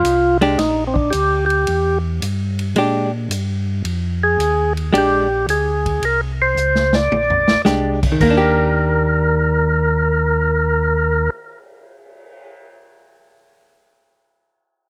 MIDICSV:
0, 0, Header, 1, 6, 480
1, 0, Start_track
1, 0, Key_signature, -3, "major"
1, 0, Tempo, 544465
1, 1477, Time_signature, 4, 2, 24, 8
1, 13128, End_track
2, 0, Start_track
2, 0, Title_t, "Tonewheel organ"
2, 0, Program_c, 0, 16
2, 0, Note_on_c, 0, 65, 88
2, 331, Note_off_c, 0, 65, 0
2, 513, Note_on_c, 0, 63, 84
2, 743, Note_off_c, 0, 63, 0
2, 770, Note_on_c, 0, 60, 54
2, 827, Note_on_c, 0, 62, 76
2, 848, Note_off_c, 0, 60, 0
2, 974, Note_on_c, 0, 67, 93
2, 994, Note_off_c, 0, 62, 0
2, 1278, Note_off_c, 0, 67, 0
2, 1289, Note_on_c, 0, 67, 84
2, 1750, Note_off_c, 0, 67, 0
2, 3733, Note_on_c, 0, 68, 103
2, 4171, Note_off_c, 0, 68, 0
2, 4390, Note_on_c, 0, 67, 68
2, 4817, Note_off_c, 0, 67, 0
2, 4850, Note_on_c, 0, 68, 72
2, 5332, Note_off_c, 0, 68, 0
2, 5334, Note_on_c, 0, 70, 87
2, 5475, Note_off_c, 0, 70, 0
2, 5657, Note_on_c, 0, 72, 83
2, 6125, Note_on_c, 0, 74, 104
2, 6139, Note_off_c, 0, 72, 0
2, 6717, Note_off_c, 0, 74, 0
2, 7240, Note_on_c, 0, 70, 75
2, 9965, Note_off_c, 0, 70, 0
2, 13128, End_track
3, 0, Start_track
3, 0, Title_t, "Hollow-body jazz guitar"
3, 0, Program_c, 1, 26
3, 364, Note_on_c, 1, 56, 59
3, 369, Note_on_c, 1, 62, 65
3, 374, Note_on_c, 1, 67, 61
3, 503, Note_off_c, 1, 56, 0
3, 505, Note_off_c, 1, 62, 0
3, 508, Note_off_c, 1, 67, 0
3, 2436, Note_on_c, 1, 56, 53
3, 2452, Note_on_c, 1, 62, 54
3, 2455, Note_on_c, 1, 67, 60
3, 2728, Note_off_c, 1, 56, 0
3, 2735, Note_off_c, 1, 62, 0
3, 2737, Note_off_c, 1, 67, 0
3, 4343, Note_on_c, 1, 56, 58
3, 4352, Note_on_c, 1, 62, 68
3, 4352, Note_on_c, 1, 67, 69
3, 4639, Note_off_c, 1, 56, 0
3, 4644, Note_off_c, 1, 62, 0
3, 4644, Note_off_c, 1, 67, 0
3, 6744, Note_on_c, 1, 56, 61
3, 6753, Note_on_c, 1, 67, 59
3, 6755, Note_on_c, 1, 62, 56
3, 7039, Note_off_c, 1, 56, 0
3, 7044, Note_off_c, 1, 67, 0
3, 7045, Note_off_c, 1, 62, 0
3, 7158, Note_on_c, 1, 51, 52
3, 7250, Note_on_c, 1, 58, 62
3, 7320, Note_on_c, 1, 62, 63
3, 7383, Note_on_c, 1, 67, 70
3, 9918, Note_off_c, 1, 51, 0
3, 10010, Note_off_c, 1, 58, 0
3, 10081, Note_off_c, 1, 62, 0
3, 10144, Note_off_c, 1, 67, 0
3, 13128, End_track
4, 0, Start_track
4, 0, Title_t, "Tonewheel organ"
4, 0, Program_c, 2, 16
4, 36, Note_on_c, 2, 36, 82
4, 502, Note_off_c, 2, 36, 0
4, 520, Note_on_c, 2, 34, 75
4, 984, Note_off_c, 2, 34, 0
4, 1003, Note_on_c, 2, 38, 91
4, 1465, Note_off_c, 2, 38, 0
4, 1484, Note_on_c, 2, 40, 86
4, 1945, Note_off_c, 2, 40, 0
4, 1958, Note_on_c, 2, 43, 80
4, 2421, Note_off_c, 2, 43, 0
4, 2429, Note_on_c, 2, 46, 64
4, 2895, Note_off_c, 2, 46, 0
4, 2903, Note_on_c, 2, 43, 82
4, 3372, Note_off_c, 2, 43, 0
4, 3387, Note_on_c, 2, 41, 88
4, 3854, Note_off_c, 2, 41, 0
4, 3866, Note_on_c, 2, 39, 87
4, 4333, Note_off_c, 2, 39, 0
4, 4342, Note_on_c, 2, 34, 75
4, 4810, Note_off_c, 2, 34, 0
4, 4823, Note_on_c, 2, 38, 85
4, 5291, Note_off_c, 2, 38, 0
4, 5308, Note_on_c, 2, 36, 78
4, 5773, Note_off_c, 2, 36, 0
4, 5784, Note_on_c, 2, 37, 87
4, 6251, Note_off_c, 2, 37, 0
4, 6266, Note_on_c, 2, 34, 70
4, 6570, Note_off_c, 2, 34, 0
4, 6599, Note_on_c, 2, 34, 31
4, 6675, Note_off_c, 2, 34, 0
4, 6742, Note_on_c, 2, 36, 86
4, 7210, Note_off_c, 2, 36, 0
4, 7231, Note_on_c, 2, 39, 92
4, 9956, Note_off_c, 2, 39, 0
4, 13128, End_track
5, 0, Start_track
5, 0, Title_t, "Cymbal swell"
5, 7567, Note_on_c, 9, 59, 36
5, 10987, Note_off_c, 9, 59, 0
5, 13128, End_track
6, 0, Start_track
6, 0, Title_t, "Drums"
6, 40, Note_on_c, 9, 44, 46
6, 40, Note_on_c, 9, 51, 56
6, 128, Note_off_c, 9, 44, 0
6, 128, Note_off_c, 9, 51, 0
6, 365, Note_on_c, 9, 51, 42
6, 453, Note_off_c, 9, 51, 0
6, 516, Note_on_c, 9, 51, 54
6, 517, Note_on_c, 9, 38, 35
6, 604, Note_off_c, 9, 51, 0
6, 605, Note_off_c, 9, 38, 0
6, 843, Note_on_c, 9, 36, 52
6, 931, Note_off_c, 9, 36, 0
6, 991, Note_on_c, 9, 44, 53
6, 991, Note_on_c, 9, 51, 57
6, 1080, Note_off_c, 9, 44, 0
6, 1080, Note_off_c, 9, 51, 0
6, 1323, Note_on_c, 9, 51, 39
6, 1411, Note_off_c, 9, 51, 0
6, 1471, Note_on_c, 9, 51, 53
6, 1560, Note_off_c, 9, 51, 0
6, 1958, Note_on_c, 9, 44, 53
6, 1958, Note_on_c, 9, 51, 61
6, 2046, Note_off_c, 9, 44, 0
6, 2046, Note_off_c, 9, 51, 0
6, 2282, Note_on_c, 9, 51, 41
6, 2370, Note_off_c, 9, 51, 0
6, 2430, Note_on_c, 9, 51, 52
6, 2519, Note_off_c, 9, 51, 0
6, 2916, Note_on_c, 9, 44, 58
6, 2916, Note_on_c, 9, 51, 62
6, 3004, Note_off_c, 9, 44, 0
6, 3004, Note_off_c, 9, 51, 0
6, 3392, Note_on_c, 9, 51, 55
6, 3480, Note_off_c, 9, 51, 0
6, 3878, Note_on_c, 9, 44, 55
6, 3878, Note_on_c, 9, 51, 55
6, 3966, Note_off_c, 9, 44, 0
6, 3966, Note_off_c, 9, 51, 0
6, 4206, Note_on_c, 9, 51, 39
6, 4294, Note_off_c, 9, 51, 0
6, 4363, Note_on_c, 9, 51, 59
6, 4451, Note_off_c, 9, 51, 0
6, 4836, Note_on_c, 9, 44, 49
6, 4836, Note_on_c, 9, 51, 58
6, 4924, Note_off_c, 9, 44, 0
6, 4924, Note_off_c, 9, 51, 0
6, 5163, Note_on_c, 9, 36, 42
6, 5165, Note_on_c, 9, 51, 43
6, 5251, Note_off_c, 9, 36, 0
6, 5253, Note_off_c, 9, 51, 0
6, 5312, Note_on_c, 9, 51, 55
6, 5400, Note_off_c, 9, 51, 0
6, 5791, Note_on_c, 9, 44, 45
6, 5880, Note_off_c, 9, 44, 0
6, 5953, Note_on_c, 9, 38, 45
6, 6042, Note_off_c, 9, 38, 0
6, 6107, Note_on_c, 9, 38, 62
6, 6195, Note_off_c, 9, 38, 0
6, 6275, Note_on_c, 9, 48, 58
6, 6364, Note_off_c, 9, 48, 0
6, 6436, Note_on_c, 9, 43, 63
6, 6524, Note_off_c, 9, 43, 0
6, 6590, Note_on_c, 9, 38, 66
6, 6679, Note_off_c, 9, 38, 0
6, 6747, Note_on_c, 9, 44, 51
6, 6748, Note_on_c, 9, 38, 52
6, 6835, Note_off_c, 9, 44, 0
6, 6836, Note_off_c, 9, 38, 0
6, 7078, Note_on_c, 9, 49, 62
6, 7079, Note_on_c, 9, 36, 65
6, 7166, Note_off_c, 9, 49, 0
6, 7167, Note_off_c, 9, 36, 0
6, 7234, Note_on_c, 9, 36, 53
6, 7235, Note_on_c, 9, 49, 59
6, 7322, Note_off_c, 9, 36, 0
6, 7323, Note_off_c, 9, 49, 0
6, 13128, End_track
0, 0, End_of_file